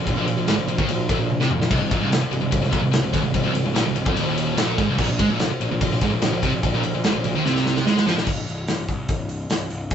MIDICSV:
0, 0, Header, 1, 6, 480
1, 0, Start_track
1, 0, Tempo, 410678
1, 74, Time_signature, 4, 2, 24, 8
1, 11626, End_track
2, 0, Start_track
2, 0, Title_t, "Distorted electric guitar"
2, 0, Program_c, 0, 30
2, 89, Note_on_c, 0, 46, 80
2, 193, Note_off_c, 0, 46, 0
2, 207, Note_on_c, 0, 46, 117
2, 313, Note_off_c, 0, 46, 0
2, 326, Note_on_c, 0, 46, 81
2, 429, Note_off_c, 0, 46, 0
2, 443, Note_on_c, 0, 46, 68
2, 555, Note_off_c, 0, 46, 0
2, 560, Note_on_c, 0, 44, 99
2, 669, Note_off_c, 0, 44, 0
2, 678, Note_on_c, 0, 46, 70
2, 790, Note_off_c, 0, 46, 0
2, 804, Note_on_c, 0, 46, 76
2, 918, Note_off_c, 0, 46, 0
2, 921, Note_on_c, 0, 51, 106
2, 1030, Note_off_c, 0, 51, 0
2, 1047, Note_on_c, 0, 46, 68
2, 1232, Note_off_c, 0, 46, 0
2, 1287, Note_on_c, 0, 46, 103
2, 1393, Note_off_c, 0, 46, 0
2, 1407, Note_on_c, 0, 46, 72
2, 1592, Note_off_c, 0, 46, 0
2, 1652, Note_on_c, 0, 48, 101
2, 1755, Note_off_c, 0, 48, 0
2, 1760, Note_on_c, 0, 46, 71
2, 1873, Note_off_c, 0, 46, 0
2, 1887, Note_on_c, 0, 46, 69
2, 1993, Note_off_c, 0, 46, 0
2, 1997, Note_on_c, 0, 36, 113
2, 2104, Note_off_c, 0, 36, 0
2, 2118, Note_on_c, 0, 36, 77
2, 2226, Note_off_c, 0, 36, 0
2, 2231, Note_on_c, 0, 46, 106
2, 2342, Note_off_c, 0, 46, 0
2, 2347, Note_on_c, 0, 36, 102
2, 2448, Note_off_c, 0, 36, 0
2, 2462, Note_on_c, 0, 36, 72
2, 2573, Note_off_c, 0, 36, 0
2, 2703, Note_on_c, 0, 36, 77
2, 2802, Note_off_c, 0, 36, 0
2, 2816, Note_on_c, 0, 36, 68
2, 2922, Note_off_c, 0, 36, 0
2, 2936, Note_on_c, 0, 36, 75
2, 3047, Note_off_c, 0, 36, 0
2, 3061, Note_on_c, 0, 36, 78
2, 3163, Note_off_c, 0, 36, 0
2, 3167, Note_on_c, 0, 46, 103
2, 3293, Note_off_c, 0, 46, 0
2, 3304, Note_on_c, 0, 36, 66
2, 3393, Note_off_c, 0, 36, 0
2, 3407, Note_on_c, 0, 36, 80
2, 3524, Note_off_c, 0, 36, 0
2, 3538, Note_on_c, 0, 36, 71
2, 3653, Note_off_c, 0, 36, 0
2, 3657, Note_on_c, 0, 39, 103
2, 3778, Note_off_c, 0, 39, 0
2, 3784, Note_on_c, 0, 36, 69
2, 3890, Note_off_c, 0, 36, 0
2, 3904, Note_on_c, 0, 36, 81
2, 4003, Note_off_c, 0, 36, 0
2, 4017, Note_on_c, 0, 36, 113
2, 4130, Note_off_c, 0, 36, 0
2, 4144, Note_on_c, 0, 36, 74
2, 4257, Note_off_c, 0, 36, 0
2, 4271, Note_on_c, 0, 36, 67
2, 4374, Note_off_c, 0, 36, 0
2, 4379, Note_on_c, 0, 46, 110
2, 4496, Note_off_c, 0, 46, 0
2, 4501, Note_on_c, 0, 36, 75
2, 4601, Note_off_c, 0, 36, 0
2, 4615, Note_on_c, 0, 36, 70
2, 4734, Note_off_c, 0, 36, 0
2, 4738, Note_on_c, 0, 41, 100
2, 4852, Note_off_c, 0, 41, 0
2, 4857, Note_on_c, 0, 39, 100
2, 5339, Note_off_c, 0, 39, 0
2, 5346, Note_on_c, 0, 46, 106
2, 5583, Note_off_c, 0, 46, 0
2, 5591, Note_on_c, 0, 44, 102
2, 5702, Note_off_c, 0, 44, 0
2, 5706, Note_on_c, 0, 36, 85
2, 5818, Note_off_c, 0, 36, 0
2, 5823, Note_on_c, 0, 46, 110
2, 5932, Note_off_c, 0, 46, 0
2, 5946, Note_on_c, 0, 46, 81
2, 6066, Note_on_c, 0, 56, 101
2, 6071, Note_off_c, 0, 46, 0
2, 6183, Note_off_c, 0, 56, 0
2, 6190, Note_on_c, 0, 46, 107
2, 6297, Note_off_c, 0, 46, 0
2, 6312, Note_on_c, 0, 46, 74
2, 6415, Note_off_c, 0, 46, 0
2, 6560, Note_on_c, 0, 46, 77
2, 6663, Note_off_c, 0, 46, 0
2, 6677, Note_on_c, 0, 46, 78
2, 6776, Note_off_c, 0, 46, 0
2, 6790, Note_on_c, 0, 46, 66
2, 6907, Note_off_c, 0, 46, 0
2, 6921, Note_on_c, 0, 46, 78
2, 7033, Note_off_c, 0, 46, 0
2, 7038, Note_on_c, 0, 44, 100
2, 7149, Note_off_c, 0, 44, 0
2, 7156, Note_on_c, 0, 46, 68
2, 7253, Note_off_c, 0, 46, 0
2, 7267, Note_on_c, 0, 46, 78
2, 7381, Note_off_c, 0, 46, 0
2, 7395, Note_on_c, 0, 46, 76
2, 7513, Note_on_c, 0, 48, 106
2, 7514, Note_off_c, 0, 46, 0
2, 7626, Note_off_c, 0, 48, 0
2, 7631, Note_on_c, 0, 46, 67
2, 7748, Note_off_c, 0, 46, 0
2, 7762, Note_on_c, 0, 46, 75
2, 7866, Note_off_c, 0, 46, 0
2, 7880, Note_on_c, 0, 46, 117
2, 7985, Note_off_c, 0, 46, 0
2, 7999, Note_on_c, 0, 46, 81
2, 8104, Note_off_c, 0, 46, 0
2, 8118, Note_on_c, 0, 46, 67
2, 8235, Note_off_c, 0, 46, 0
2, 8240, Note_on_c, 0, 44, 108
2, 8349, Note_off_c, 0, 44, 0
2, 8356, Note_on_c, 0, 46, 69
2, 8463, Note_off_c, 0, 46, 0
2, 8477, Note_on_c, 0, 46, 77
2, 8595, Note_off_c, 0, 46, 0
2, 8595, Note_on_c, 0, 51, 94
2, 8706, Note_off_c, 0, 51, 0
2, 8710, Note_on_c, 0, 48, 94
2, 9184, Note_off_c, 0, 48, 0
2, 9193, Note_on_c, 0, 56, 108
2, 9426, Note_off_c, 0, 56, 0
2, 9435, Note_on_c, 0, 53, 108
2, 9547, Note_off_c, 0, 53, 0
2, 9556, Note_on_c, 0, 46, 86
2, 9667, Note_off_c, 0, 46, 0
2, 11626, End_track
3, 0, Start_track
3, 0, Title_t, "Picked electric bass"
3, 0, Program_c, 1, 34
3, 82, Note_on_c, 1, 34, 78
3, 189, Note_off_c, 1, 34, 0
3, 199, Note_on_c, 1, 34, 90
3, 308, Note_off_c, 1, 34, 0
3, 328, Note_on_c, 1, 34, 80
3, 432, Note_off_c, 1, 34, 0
3, 443, Note_on_c, 1, 34, 76
3, 550, Note_off_c, 1, 34, 0
3, 567, Note_on_c, 1, 32, 87
3, 672, Note_off_c, 1, 32, 0
3, 680, Note_on_c, 1, 34, 86
3, 788, Note_off_c, 1, 34, 0
3, 808, Note_on_c, 1, 34, 79
3, 912, Note_off_c, 1, 34, 0
3, 917, Note_on_c, 1, 39, 87
3, 1027, Note_off_c, 1, 39, 0
3, 1048, Note_on_c, 1, 34, 85
3, 1264, Note_off_c, 1, 34, 0
3, 1279, Note_on_c, 1, 34, 95
3, 1388, Note_off_c, 1, 34, 0
3, 1402, Note_on_c, 1, 34, 91
3, 1621, Note_off_c, 1, 34, 0
3, 1649, Note_on_c, 1, 36, 85
3, 1753, Note_off_c, 1, 36, 0
3, 1768, Note_on_c, 1, 34, 83
3, 1872, Note_off_c, 1, 34, 0
3, 1882, Note_on_c, 1, 34, 80
3, 1989, Note_off_c, 1, 34, 0
3, 1999, Note_on_c, 1, 24, 93
3, 2108, Note_off_c, 1, 24, 0
3, 2118, Note_on_c, 1, 24, 84
3, 2227, Note_off_c, 1, 24, 0
3, 2236, Note_on_c, 1, 34, 89
3, 2337, Note_off_c, 1, 34, 0
3, 2344, Note_on_c, 1, 24, 100
3, 2460, Note_off_c, 1, 24, 0
3, 2465, Note_on_c, 1, 24, 74
3, 2580, Note_off_c, 1, 24, 0
3, 2705, Note_on_c, 1, 24, 81
3, 2816, Note_off_c, 1, 24, 0
3, 2823, Note_on_c, 1, 24, 81
3, 2940, Note_off_c, 1, 24, 0
3, 2953, Note_on_c, 1, 24, 76
3, 3054, Note_off_c, 1, 24, 0
3, 3061, Note_on_c, 1, 24, 72
3, 3178, Note_off_c, 1, 24, 0
3, 3190, Note_on_c, 1, 34, 98
3, 3297, Note_off_c, 1, 34, 0
3, 3304, Note_on_c, 1, 24, 82
3, 3409, Note_off_c, 1, 24, 0
3, 3416, Note_on_c, 1, 24, 79
3, 3533, Note_off_c, 1, 24, 0
3, 3540, Note_on_c, 1, 24, 84
3, 3658, Note_off_c, 1, 24, 0
3, 3669, Note_on_c, 1, 27, 100
3, 3774, Note_off_c, 1, 27, 0
3, 3781, Note_on_c, 1, 24, 82
3, 3899, Note_off_c, 1, 24, 0
3, 3903, Note_on_c, 1, 24, 76
3, 4020, Note_off_c, 1, 24, 0
3, 4028, Note_on_c, 1, 24, 101
3, 4137, Note_off_c, 1, 24, 0
3, 4144, Note_on_c, 1, 24, 89
3, 4244, Note_off_c, 1, 24, 0
3, 4251, Note_on_c, 1, 24, 74
3, 4363, Note_off_c, 1, 24, 0
3, 4370, Note_on_c, 1, 34, 100
3, 4493, Note_off_c, 1, 34, 0
3, 4504, Note_on_c, 1, 24, 82
3, 4603, Note_off_c, 1, 24, 0
3, 4610, Note_on_c, 1, 24, 87
3, 4733, Note_off_c, 1, 24, 0
3, 4748, Note_on_c, 1, 29, 101
3, 4849, Note_off_c, 1, 29, 0
3, 4856, Note_on_c, 1, 27, 97
3, 5311, Note_off_c, 1, 27, 0
3, 5336, Note_on_c, 1, 34, 96
3, 5568, Note_off_c, 1, 34, 0
3, 5592, Note_on_c, 1, 32, 103
3, 5705, Note_off_c, 1, 32, 0
3, 5711, Note_on_c, 1, 24, 109
3, 5825, Note_off_c, 1, 24, 0
3, 5830, Note_on_c, 1, 34, 95
3, 5936, Note_off_c, 1, 34, 0
3, 5943, Note_on_c, 1, 34, 74
3, 6060, Note_off_c, 1, 34, 0
3, 6072, Note_on_c, 1, 44, 103
3, 6173, Note_off_c, 1, 44, 0
3, 6180, Note_on_c, 1, 34, 93
3, 6298, Note_off_c, 1, 34, 0
3, 6303, Note_on_c, 1, 34, 72
3, 6415, Note_off_c, 1, 34, 0
3, 6548, Note_on_c, 1, 34, 86
3, 6645, Note_off_c, 1, 34, 0
3, 6652, Note_on_c, 1, 34, 94
3, 6774, Note_off_c, 1, 34, 0
3, 6796, Note_on_c, 1, 34, 78
3, 6890, Note_off_c, 1, 34, 0
3, 6897, Note_on_c, 1, 34, 75
3, 7017, Note_off_c, 1, 34, 0
3, 7032, Note_on_c, 1, 32, 102
3, 7128, Note_off_c, 1, 32, 0
3, 7135, Note_on_c, 1, 34, 93
3, 7248, Note_off_c, 1, 34, 0
3, 7255, Note_on_c, 1, 34, 79
3, 7366, Note_off_c, 1, 34, 0
3, 7373, Note_on_c, 1, 34, 82
3, 7494, Note_off_c, 1, 34, 0
3, 7516, Note_on_c, 1, 36, 102
3, 7618, Note_off_c, 1, 36, 0
3, 7625, Note_on_c, 1, 34, 83
3, 7741, Note_off_c, 1, 34, 0
3, 7753, Note_on_c, 1, 34, 75
3, 7865, Note_off_c, 1, 34, 0
3, 7874, Note_on_c, 1, 34, 95
3, 7986, Note_off_c, 1, 34, 0
3, 7995, Note_on_c, 1, 34, 73
3, 8106, Note_off_c, 1, 34, 0
3, 8125, Note_on_c, 1, 34, 72
3, 8231, Note_off_c, 1, 34, 0
3, 8247, Note_on_c, 1, 32, 93
3, 8353, Note_off_c, 1, 32, 0
3, 8364, Note_on_c, 1, 34, 83
3, 8471, Note_off_c, 1, 34, 0
3, 8479, Note_on_c, 1, 34, 88
3, 8578, Note_off_c, 1, 34, 0
3, 8585, Note_on_c, 1, 39, 99
3, 8700, Note_off_c, 1, 39, 0
3, 8720, Note_on_c, 1, 36, 94
3, 9163, Note_off_c, 1, 36, 0
3, 9185, Note_on_c, 1, 44, 88
3, 9412, Note_off_c, 1, 44, 0
3, 9430, Note_on_c, 1, 41, 90
3, 9537, Note_off_c, 1, 41, 0
3, 9544, Note_on_c, 1, 34, 106
3, 9656, Note_off_c, 1, 34, 0
3, 9663, Note_on_c, 1, 24, 81
3, 9875, Note_off_c, 1, 24, 0
3, 9904, Note_on_c, 1, 24, 81
3, 10116, Note_off_c, 1, 24, 0
3, 10145, Note_on_c, 1, 24, 80
3, 10356, Note_off_c, 1, 24, 0
3, 10386, Note_on_c, 1, 36, 87
3, 10597, Note_off_c, 1, 36, 0
3, 10622, Note_on_c, 1, 24, 88
3, 11043, Note_off_c, 1, 24, 0
3, 11098, Note_on_c, 1, 24, 82
3, 11312, Note_off_c, 1, 24, 0
3, 11344, Note_on_c, 1, 24, 94
3, 11556, Note_off_c, 1, 24, 0
3, 11587, Note_on_c, 1, 24, 87
3, 11626, Note_off_c, 1, 24, 0
3, 11626, End_track
4, 0, Start_track
4, 0, Title_t, "Muted distorted electric guitar strokes"
4, 2587, Note_on_c, 9, 29, 58
4, 2704, Note_off_c, 9, 29, 0
4, 6429, Note_on_c, 9, 29, 61
4, 6546, Note_off_c, 9, 29, 0
4, 11626, End_track
5, 0, Start_track
5, 0, Title_t, "Muted picked electric bass strokes"
5, 2586, Note_on_c, 9, 29, 45
5, 2703, Note_off_c, 9, 29, 0
5, 6422, Note_on_c, 9, 29, 42
5, 6538, Note_off_c, 9, 29, 0
5, 11626, End_track
6, 0, Start_track
6, 0, Title_t, "Drums"
6, 80, Note_on_c, 9, 36, 87
6, 84, Note_on_c, 9, 51, 97
6, 197, Note_off_c, 9, 36, 0
6, 201, Note_off_c, 9, 51, 0
6, 321, Note_on_c, 9, 51, 72
6, 438, Note_off_c, 9, 51, 0
6, 557, Note_on_c, 9, 51, 96
6, 567, Note_on_c, 9, 38, 107
6, 674, Note_off_c, 9, 51, 0
6, 683, Note_off_c, 9, 38, 0
6, 798, Note_on_c, 9, 51, 68
6, 915, Note_off_c, 9, 51, 0
6, 917, Note_on_c, 9, 36, 110
6, 1034, Note_off_c, 9, 36, 0
6, 1036, Note_on_c, 9, 51, 102
6, 1153, Note_off_c, 9, 51, 0
6, 1277, Note_on_c, 9, 36, 105
6, 1281, Note_on_c, 9, 51, 70
6, 1394, Note_off_c, 9, 36, 0
6, 1398, Note_off_c, 9, 51, 0
6, 1522, Note_on_c, 9, 48, 68
6, 1639, Note_off_c, 9, 48, 0
6, 1647, Note_on_c, 9, 38, 67
6, 1761, Note_on_c, 9, 45, 88
6, 1764, Note_off_c, 9, 38, 0
6, 1878, Note_off_c, 9, 45, 0
6, 1886, Note_on_c, 9, 38, 78
6, 1996, Note_on_c, 9, 36, 106
6, 1999, Note_on_c, 9, 49, 90
6, 2003, Note_off_c, 9, 38, 0
6, 2113, Note_off_c, 9, 36, 0
6, 2116, Note_off_c, 9, 49, 0
6, 2237, Note_on_c, 9, 36, 111
6, 2244, Note_on_c, 9, 51, 68
6, 2353, Note_off_c, 9, 36, 0
6, 2361, Note_off_c, 9, 51, 0
6, 2481, Note_on_c, 9, 51, 96
6, 2490, Note_on_c, 9, 38, 122
6, 2598, Note_off_c, 9, 51, 0
6, 2607, Note_off_c, 9, 38, 0
6, 2718, Note_on_c, 9, 51, 61
6, 2835, Note_off_c, 9, 51, 0
6, 2949, Note_on_c, 9, 36, 97
6, 2949, Note_on_c, 9, 51, 99
6, 3066, Note_off_c, 9, 36, 0
6, 3066, Note_off_c, 9, 51, 0
6, 3078, Note_on_c, 9, 38, 31
6, 3187, Note_on_c, 9, 36, 92
6, 3189, Note_on_c, 9, 51, 70
6, 3195, Note_off_c, 9, 38, 0
6, 3304, Note_off_c, 9, 36, 0
6, 3306, Note_off_c, 9, 51, 0
6, 3424, Note_on_c, 9, 51, 106
6, 3434, Note_on_c, 9, 38, 115
6, 3541, Note_off_c, 9, 51, 0
6, 3551, Note_off_c, 9, 38, 0
6, 3666, Note_on_c, 9, 36, 100
6, 3671, Note_on_c, 9, 51, 83
6, 3680, Note_on_c, 9, 38, 34
6, 3783, Note_off_c, 9, 36, 0
6, 3788, Note_off_c, 9, 51, 0
6, 3797, Note_off_c, 9, 38, 0
6, 3903, Note_on_c, 9, 51, 107
6, 3905, Note_on_c, 9, 36, 86
6, 4020, Note_off_c, 9, 51, 0
6, 4022, Note_off_c, 9, 36, 0
6, 4148, Note_on_c, 9, 51, 79
6, 4265, Note_off_c, 9, 51, 0
6, 4389, Note_on_c, 9, 51, 100
6, 4398, Note_on_c, 9, 38, 121
6, 4506, Note_off_c, 9, 51, 0
6, 4515, Note_off_c, 9, 38, 0
6, 4626, Note_on_c, 9, 51, 70
6, 4742, Note_off_c, 9, 51, 0
6, 4748, Note_on_c, 9, 36, 118
6, 4865, Note_off_c, 9, 36, 0
6, 4868, Note_on_c, 9, 51, 109
6, 4985, Note_off_c, 9, 51, 0
6, 5115, Note_on_c, 9, 51, 76
6, 5232, Note_off_c, 9, 51, 0
6, 5347, Note_on_c, 9, 51, 111
6, 5356, Note_on_c, 9, 38, 127
6, 5464, Note_off_c, 9, 51, 0
6, 5473, Note_off_c, 9, 38, 0
6, 5590, Note_on_c, 9, 36, 110
6, 5593, Note_on_c, 9, 51, 66
6, 5603, Note_on_c, 9, 38, 33
6, 5707, Note_off_c, 9, 36, 0
6, 5710, Note_off_c, 9, 51, 0
6, 5720, Note_off_c, 9, 38, 0
6, 5823, Note_on_c, 9, 57, 93
6, 5829, Note_on_c, 9, 36, 108
6, 5940, Note_off_c, 9, 57, 0
6, 5945, Note_off_c, 9, 36, 0
6, 6071, Note_on_c, 9, 36, 107
6, 6074, Note_on_c, 9, 51, 64
6, 6188, Note_off_c, 9, 36, 0
6, 6191, Note_off_c, 9, 51, 0
6, 6305, Note_on_c, 9, 51, 94
6, 6314, Note_on_c, 9, 38, 100
6, 6421, Note_off_c, 9, 51, 0
6, 6431, Note_off_c, 9, 38, 0
6, 6555, Note_on_c, 9, 51, 68
6, 6672, Note_off_c, 9, 51, 0
6, 6791, Note_on_c, 9, 51, 106
6, 6792, Note_on_c, 9, 36, 93
6, 6908, Note_off_c, 9, 51, 0
6, 6909, Note_off_c, 9, 36, 0
6, 6919, Note_on_c, 9, 38, 34
6, 7027, Note_on_c, 9, 51, 71
6, 7031, Note_on_c, 9, 36, 104
6, 7036, Note_off_c, 9, 38, 0
6, 7144, Note_off_c, 9, 51, 0
6, 7148, Note_off_c, 9, 36, 0
6, 7266, Note_on_c, 9, 51, 105
6, 7276, Note_on_c, 9, 38, 115
6, 7383, Note_off_c, 9, 51, 0
6, 7393, Note_off_c, 9, 38, 0
6, 7514, Note_on_c, 9, 36, 98
6, 7515, Note_on_c, 9, 51, 78
6, 7525, Note_on_c, 9, 38, 35
6, 7631, Note_off_c, 9, 36, 0
6, 7632, Note_off_c, 9, 51, 0
6, 7641, Note_off_c, 9, 38, 0
6, 7751, Note_on_c, 9, 51, 101
6, 7752, Note_on_c, 9, 36, 95
6, 7868, Note_off_c, 9, 51, 0
6, 7869, Note_off_c, 9, 36, 0
6, 7989, Note_on_c, 9, 51, 70
6, 8106, Note_off_c, 9, 51, 0
6, 8227, Note_on_c, 9, 51, 99
6, 8236, Note_on_c, 9, 38, 108
6, 8344, Note_off_c, 9, 51, 0
6, 8353, Note_off_c, 9, 38, 0
6, 8463, Note_on_c, 9, 51, 72
6, 8580, Note_off_c, 9, 51, 0
6, 8718, Note_on_c, 9, 38, 64
6, 8834, Note_off_c, 9, 38, 0
6, 8838, Note_on_c, 9, 38, 58
6, 8954, Note_off_c, 9, 38, 0
6, 8954, Note_on_c, 9, 38, 79
6, 9071, Note_off_c, 9, 38, 0
6, 9077, Note_on_c, 9, 38, 71
6, 9193, Note_off_c, 9, 38, 0
6, 9196, Note_on_c, 9, 38, 90
6, 9313, Note_off_c, 9, 38, 0
6, 9317, Note_on_c, 9, 38, 87
6, 9434, Note_off_c, 9, 38, 0
6, 9439, Note_on_c, 9, 38, 99
6, 9555, Note_off_c, 9, 38, 0
6, 9555, Note_on_c, 9, 38, 80
6, 9660, Note_on_c, 9, 57, 85
6, 9665, Note_on_c, 9, 36, 98
6, 9672, Note_off_c, 9, 38, 0
6, 9777, Note_off_c, 9, 57, 0
6, 9782, Note_off_c, 9, 36, 0
6, 9904, Note_on_c, 9, 46, 47
6, 10021, Note_off_c, 9, 46, 0
6, 10142, Note_on_c, 9, 46, 65
6, 10151, Note_on_c, 9, 38, 93
6, 10258, Note_off_c, 9, 46, 0
6, 10268, Note_off_c, 9, 38, 0
6, 10382, Note_on_c, 9, 46, 42
6, 10386, Note_on_c, 9, 36, 80
6, 10499, Note_off_c, 9, 46, 0
6, 10502, Note_off_c, 9, 36, 0
6, 10619, Note_on_c, 9, 46, 73
6, 10624, Note_on_c, 9, 36, 100
6, 10736, Note_off_c, 9, 46, 0
6, 10741, Note_off_c, 9, 36, 0
6, 10859, Note_on_c, 9, 46, 55
6, 10976, Note_off_c, 9, 46, 0
6, 11102, Note_on_c, 9, 46, 80
6, 11111, Note_on_c, 9, 38, 109
6, 11219, Note_off_c, 9, 46, 0
6, 11228, Note_off_c, 9, 38, 0
6, 11341, Note_on_c, 9, 46, 54
6, 11458, Note_off_c, 9, 46, 0
6, 11578, Note_on_c, 9, 46, 71
6, 11584, Note_on_c, 9, 36, 100
6, 11626, Note_off_c, 9, 36, 0
6, 11626, Note_off_c, 9, 46, 0
6, 11626, End_track
0, 0, End_of_file